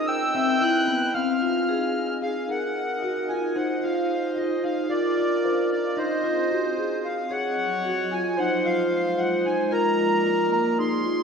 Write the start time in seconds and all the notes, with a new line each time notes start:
Already playing: D#4
0.07 C4 B4 E5 G5 E6
0.35 C4 E5
0.61 E4 F#6
0.88 B3
1.14 C4 D#4 G#4 F5 F6
1.42 F4
1.69 G#4
2.22 G#4 F5
2.48 D#4 F#4 G#4 A#4 D#5 F#5
3.03 F#4
3.29 F4 G#5
3.56 D#4 G#4 C5 F#5
3.82 F4 F5
4.37 F4 D#5
4.64 D#4 F5
4.90 D4 F4 A#4 D5 F5
5.17 F4
5.44 F4 C5
5.72 D5
5.97 C4 D#4 G#4 C5 D#5
6.24 F4
6.51 F#4
6.77 G#4
7.05 F5
7.31 F3 F#3 G#4 C#5 F#5
7.85 F#4
8.12 F4 G#5
8.37 G#3 D#4 C5 F#5
8.65 F4 F5
9.18 F4 F#5
9.46 D#4 G#5
9.71 A#3 F4 A#4 D5 A#5
9.99 F4
10.26 F4
10.52 A#5
10.79 G#3 D#4 G#4 C5 C6
11.05 F4